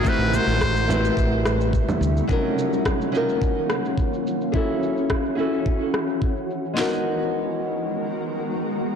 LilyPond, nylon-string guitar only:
\new Staff \with { instrumentName = "Nylon-string guitar" } { \time 4/4 \key fis \major \tempo 4 = 107 <a c' e' g' c''>4. <a c' e' g' b'>2~ <a c' e' g' b'>8 | <fis cis' dis' eis' ais'>4. <fis cis' dis' eis' ais'>2~ <fis cis' dis' eis' ais'>8 | <cis' e' fis' gis' a'>4. <cis' e' fis' gis' a'>2~ <cis' e' fis' gis' a'>8 | <gis b dis' fis' ais'>1 | }